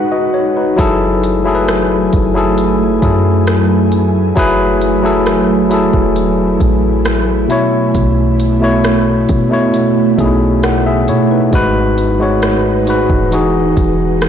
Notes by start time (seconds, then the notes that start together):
Already playing: G#3 D#4 F#4 B4 F#5
0.12 F#4 D#5
0.34 C#5
0.57 D#4 B4
0.77 F#1 F#3 A3 E4 G#4 A4 G#5, kick, closed hi-hat
1.24 closed hi-hat
1.44 F#3 E4 G#4 A4
1.55 B4
1.68 cross-stick, closed hi-hat
2.13 F#1, kick, closed hi-hat
2.34 F#3 E4 G#4 A4
2.58 closed hi-hat
3.01 F#2 F#3 E4 G#4 A4, kick, closed hi-hat
3.47 cross-stick, closed hi-hat
3.92 closed hi-hat
4.35 F#1 F#3 E4 G#4 B4, kick, closed hi-hat
4.81 closed hi-hat
5.02 F#3 E4 G#4 A4
5.26 cross-stick, closed hi-hat
5.70 F#3 E4 G#4 A4, closed hi-hat
5.93 E1, kick
6.16 closed hi-hat
6.60 A1, kick, closed hi-hat
7.05 cross-stick, closed hi-hat
7.48 B2 A3 B3 E4 C#5, closed hi-hat
7.95 B1, kick, closed hi-hat
8.40 closed hi-hat
8.60 B2 A3 E4 C#5
8.84 cross-stick, closed hi-hat
9.29 B2, kick, closed hi-hat
9.50 B2 A3 E4 C#5
9.74 closed hi-hat
10.17 B1 B2 A3 D#4 G#4, kick, closed hi-hat
10.26 E4
10.63 A4 F#5, cross-stick, closed hi-hat
10.86 G#4 E5
11.08 B2 E4 C#5, closed hi-hat
11.31 D#4 B4
11.52 G#1 G#2 G#3 D#4 F#4 B4, kick, closed hi-hat
11.98 closed hi-hat
12.19 G#2 G#3 F#4 C#5
12.42 cross-stick, closed hi-hat
12.86 G#2 G#3 F#4 B4, closed hi-hat
13.10 E1, kick
13.31 E3 D#4 F#4 G#4, closed hi-hat
13.77 E1, kick, closed hi-hat
14.22 cross-stick, closed hi-hat